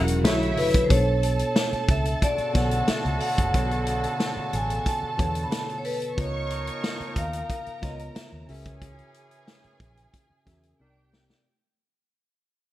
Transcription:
Already playing: fingered electric bass E1, tine electric piano F#3 C#4 E4 G#4 A#4, violin section F#4 F#5, vibraphone A#4
0.08 closed hi-hat
0.23 fingered electric bass B1, tine electric piano B2 D3 F#3 E4 A4 C#5, horn section C#3 A3 E4, violin section E4 E5, snare, closed hi-hat
0.43 closed hi-hat
0.57 fingered electric bass F#1, vibraphone B4, open hi-hat
0.74 kick, closed hi-hat
0.84 vibraphone C5
0.89 fingered electric bass B1, tine electric piano B2 B3 D4 A4 C#5, violin section A4 A5, vibraphone C#5, kick, closed hi-hat
1.23 closed hi-hat
1.39 closed hi-hat
1.56 snare, closed hi-hat
1.73 muted fingered electric bass stroke, closed hi-hat
1.88 fingered electric bass C#2, vibraphone E5, kick, closed hi-hat
2.05 closed hi-hat
2.22 horn section C#3 D3 F#4, vibraphone D5, kick, closed hi-hat
2.38 muted fingered electric bass stroke, closed hi-hat
2.53 fingered electric bass B1, tine electric piano B2 D3 B3 A4 C#5, vibraphone F#5, kick, snare, closed hi-hat
2.71 closed hi-hat
2.88 vibraphone E5, muted fingered electric bass stroke, snare, closed hi-hat
3.05 fingered electric bass C#2, closed hi-hat
3.20 vibraphone F#5, open hi-hat
3.38 fingered electric bass F#1, kick, closed hi-hat
3.53 fingered electric bass B1, tine electric piano B2 D3 B3 A4 C#5, kick, closed hi-hat
3.71 closed hi-hat
3.87 closed hi-hat
4.04 closed hi-hat
4.20 snare, closed hi-hat
4.37 muted fingered electric bass stroke
4.53 fingered electric bass A1, vibraphone G#5, closed hi-hat
4.70 closed hi-hat
4.79 vibraphone G#5
4.86 vibraphone A5, kick, closed hi-hat
5.03 muted fingered electric bass stroke
5.17 fingered electric bass E2, tine electric piano B2 D3 B3 A4 C#5, kick, closed hi-hat
5.35 closed hi-hat
5.43 vibraphone B5
5.51 vibraphone A5, snare, closed hi-hat
5.70 closed hi-hat
5.78 vibraphone C#5
5.84 vibraphone B4, open hi-hat
6.02 closed hi-hat
6.16 fingered electric bass C#2, tine electric piano C#3 B3 F4 A#4 D#5, horn section F3 D#4 A#4, violin section C#5 C#6, kick, closed hi-hat
6.20 vibraphone C#5
6.50 closed hi-hat
6.67 closed hi-hat
6.84 snare, closed hi-hat
7.00 muted fingered electric bass stroke, closed hi-hat
7.16 fingered electric bass D#2, violin section A#4 A#5, vibraphone F5, kick, closed hi-hat
7.33 closed hi-hat
7.50 kick, closed hi-hat
7.66 muted fingered electric bass stroke, closed hi-hat
7.81 fingered electric bass C#2, tine electric piano C#3 B3 F4 A#4 C#5, vibraphone D#5, kick, snare, closed hi-hat
7.99 closed hi-hat
8.15 vibraphone E5, muted fingered electric bass stroke, snare, closed hi-hat
8.32 fingered electric bass D#2
8.47 fingered electric bass C#2, tine electric piano C#3 C#4 F#4 G#4 A#4 E5, horn section E3 C#4 G#4, violin section G#4 G#5, open hi-hat
8.65 kick, closed hi-hat
8.81 kick, closed hi-hat
8.99 closed hi-hat
9.14 closed hi-hat
9.31 closed hi-hat
9.48 snare, closed hi-hat
9.64 muted fingered electric bass stroke, closed hi-hat
9.80 fingered electric bass A#1, kick, closed hi-hat
9.97 closed hi-hat
10.14 kick, closed hi-hat
10.30 muted fingered electric bass stroke
10.45 fingered electric bass E2, tine electric piano C#3 C#4 F#4 G#4 A#4 E5, kick, snare, closed hi-hat
10.63 closed hi-hat
10.79 fingered electric bass C2, tine electric piano C3 C4 D#4 A#4 D5, horn section D#3 D4 G4, violin section G4 G5
11.13 snare
11.30 snare

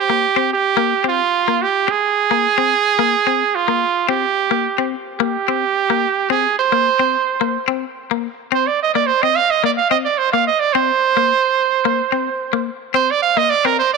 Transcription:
0.00 trumpet G4
0.10 clean electric guitar A#3
0.36 clean electric guitar C4
0.53 trumpet G4
0.77 clean electric guitar A#3
1.04 clean electric guitar C4
1.08 trumpet F4
1.48 clean electric guitar A#3
1.62 trumpet G4
1.88 trumpet G#4, muted clean electric guitar stroke
2.31 clean electric guitar A#3
2.58 clean electric guitar C4
2.99 clean electric guitar A#3
3.27 clean electric guitar C4
3.55 trumpet F4
3.68 clean electric guitar A#3
4.09 clean electric guitar C4, trumpet G4
4.51 clean electric guitar A#3
4.78 clean electric guitar C4
5.19 clean electric guitar A#3, trumpet G4
5.48 clean electric guitar C4
5.90 clean electric guitar A#3
6.30 clean electric guitar C4, trumpet G#4
6.59 trumpet C5
6.72 clean electric guitar A#3
6.99 clean electric guitar C4
7.41 clean electric guitar A#3
7.68 clean electric guitar C4
8.11 clean electric guitar A#3
8.52 clean electric guitar C4, trumpet C5
8.67 trumpet D5
8.83 trumpet D#5
8.94 clean electric guitar A#3, trumpet D5
9.06 trumpet C5
9.22 clean electric guitar C4, trumpet D#5
9.36 trumpet F5
9.50 trumpet D#5
9.64 clean electric guitar A#3, trumpet D5
9.78 trumpet F5
9.91 clean electric guitar C4, trumpet D#5
10.05 trumpet D5
10.18 trumpet C5
10.32 clean electric guitar A#3, trumpet F5
10.47 trumpet D#5
10.60 trumpet D5
10.73 clean electric guitar C4, trumpet C5
11.17 clean electric guitar A#3
11.85 clean electric guitar A#3
12.12 clean electric guitar C4
12.53 clean electric guitar A#3
12.94 clean electric guitar C4, trumpet C5
13.11 trumpet D5
13.23 trumpet F5
13.37 clean electric guitar A#3, trumpet D#5
13.50 trumpet D5
13.65 clean electric guitar C4, trumpet A#4
13.79 trumpet C5
13.94 trumpet D5

